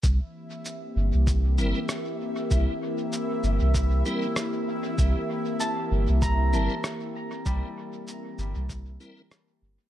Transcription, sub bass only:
X:1
M:4/4
L:1/16
Q:"Swing 16ths" 1/4=97
K:Cmix
V:1 name="Sub bass" clef=bass
C,, z4 z G,,, C,,3 G,,, z4 z | C,, z4 z G,,, C,,3 z6 | C,, z4 z G,,, C,,3 G,,, z4 z | C,, z4 z G,,, C,,3 z4 G,,, z |]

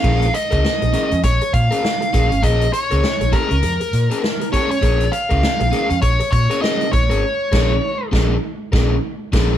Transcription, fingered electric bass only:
X:1
M:4/4
L:1/16
Q:"Swing 16ths" 1/4=100
K:Bbm
V:1 name="Fingered electric bass" clef=bass
B,,,2 z D,, z B,,, z F,, B,,, z B,, z3 B,,, A,,, | B,,,2 z D,, z B,,, z D,, F,, z B,, z4 z | B,,,2 z D,, z B,,, z F,, B,,, z B,, z3 B,,, A,,, | z2 B,,,2 z2 B,,,2 z2 B,,,2 z2 B,,,2 |]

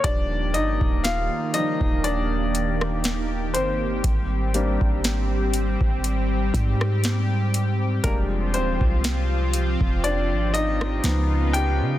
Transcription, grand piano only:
X:1
M:4/4
L:1/8
Q:"Swing 16ths" 1/4=60
K:Eb
V:1 name="Grand piano"
d [Ee] [Ff] [Ee] [Dd]3 [Cc]- | [Cc]6- [Cc] z | [B,B] [Cc]3 [Dd] [Ee]2 [Gg] |]
V:2 name="Grand piano"
[F,G,D] z2 [F,G,d] z4 | z [G,B,CD]3 z4 | [G,A,D]3 z3 [F,_CE]2 |]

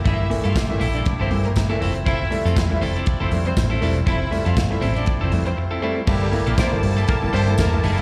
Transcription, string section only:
X:1
M:4/4
L:1/16
Q:"Swing 16ths" 1/4=120
K:Gdor
V:1 name="String section"
[Ee]2 z [Ff] z [Ee] z [Dd] z [Cc] z [B,B] z4 | [Ee]2 z [Ff] z [Ee] z [Dd] z [Cc] z [Cc] z4 | [Ee]2 z [Ff] z [Ee] z [Dd] z [Cc] z [Cc] z4 | [Aa]16 |]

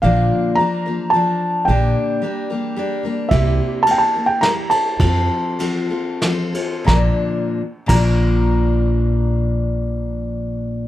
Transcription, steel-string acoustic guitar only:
X:1
M:3/4
L:1/8
Q:1/4=103
K:Bb
V:1 name="Steel-string acoustic guitar"
[B,,D,F,B,DB]2 [F,B,DB] [F,B,DB] [F,B,DB]2 | [B,,D,G,B,DB]2 [G,B,DB] [G,B,DB] [G,B,DB] [G,B,DB] | [C,G,B,=EB]2 [G,B,EB] [B,EB] [G,B,EB]2 | [F,CFA]2 [F,CFA] [CFA] [F,CFA] [CFA] |
[B,,D,F,B,DB] z2 [B,,D,F,B,DB]3- | [B,,D,F,B,DB]6 |]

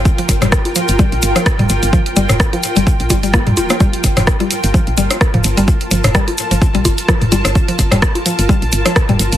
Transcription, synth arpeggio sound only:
X:1
M:4/4
L:1/16
Q:"Swing 16ths" 1/4=128
K:Gm
V:1 name="Synth arpeggio sound" clef=bass
z F, z G, z2 F, z G, z2 F, z G, z2 | F, z G, z2 F, z G, z2 G, G, B, G, z B, | G, z2 F, z G, z2 F, z G, z2 F, z G, | z2 F, z G, z2 F, z G, z2 F, z G, z |
z F, z G, z2 F, z G, z2 F, z G, z2 |]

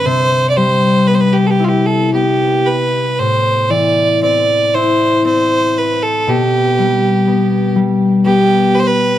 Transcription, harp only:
X:1
M:3/4
L:1/8
Q:1/4=59
K:C
V:1 name="Harp"
C, G, B, E B,2 | A,, E, C E C2 | B,, G, B, G, B,2 |]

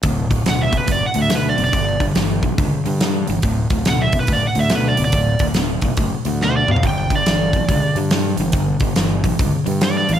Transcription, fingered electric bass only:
X:1
M:4/4
L:1/16
Q:"Swing" 1/4=141
K:D
V:1 name="Fingered electric bass" clef=bass
D,,,2 D,,,2 D,,,2 F,,, z F,,, z D,,4 F,,,2 | G,,,2 G,,,2 G,,,2 B,,, z C,, z G,,4 G,,,2 | D,,,2 D,,,2 D,,,2 F,,, z F,,, z D,,4 D,,,2- | D,,,2 D,,,2 D,,,2 F,,, z F,,, z D,,4 D,,,2 |
G,,,2 G,,,2 G,,,2 B,,, z C,, z G,,4 G,,,2- | G,,,2 G,,,2 G,,,2 B,,, z C,, z G,,4 A,,,2 |]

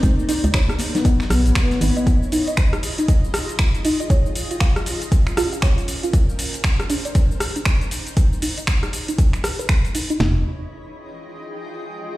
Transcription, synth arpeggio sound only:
X:1
M:4/4
L:1/16
Q:"Swing 16ths" 1/4=118
K:Fm
V:1 name="Synth arpeggio sound"
z2 E e d z2 E e z4 z E e | z2 E e c z2 E e z4 z E e | d z2 F f z4 z F f d z2 F | =d z4 z =D d c z2 D d z3 |
z2 E e d z2 E e z _c c z2 E E | E2 z12 z2 |]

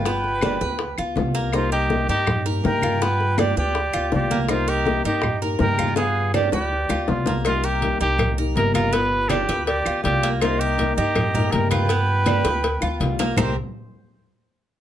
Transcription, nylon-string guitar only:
X:1
M:4/4
L:1/8
Q:1/4=162
K:Cm
V:1 name="Nylon-string guitar"
[G,=B,F]2 [G,B,F] [B,F] z [B,F] [G,B,F]2 | [C,G,B,EG]2 [C,G,B,EG] [B,EG] z [B,EG] [C,G,B,EG]2 | [G,=B,F]2 [G,B,F] [B,F] z [B,F] [G,B,F]2 | [C,G,B,EG]2 [C,G,B,EG] [B,EG] z [B,EG] [C,G,B,EG]2 |
[G,=B,F]2 [G,B,F] [B,F] z [B,F] [G,B,F]2 | [C,G,B,EG]2 [C,G,B,EG] [B,EG] z [B,EG] [C,G,B,EG]2 | [G,=B,F]2 [G,B,F] [B,F] z [B,F] [G,B,F]2 | [C,G,B,EG]2 [C,G,B,EG] [EG] z [B,EG] [C,G,B,EG]2 |
[G,F]2 [G,=B,F] [B,F] z [B,F] [G,B,F]2 | [C,G,B,EG] z6 z |]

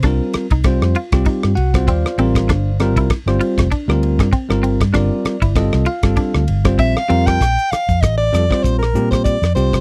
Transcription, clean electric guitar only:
X:1
M:4/4
L:1/16
Q:"Swing 16ths" 1/4=98
K:Bb
V:1 name="Clean electric guitar"
D2 z E2 z F2 E2 z2 C2 C2 | D2 z =E2 z F2 D2 z2 C2 C2 | D2 z =E2 z F2 D2 z2 C2 C2 | z16 |]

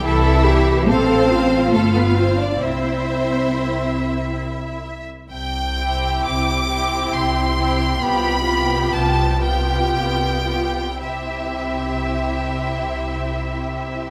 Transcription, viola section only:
X:1
M:3/4
L:1/8
Q:1/4=66
K:C
V:1 name="Viola section"
A G A F3 | E4- E z | z [CE]2 [CE]2 [CE] | [B,F] [B,F]2 [B,F]2 [B,F] |
[CE]6 |]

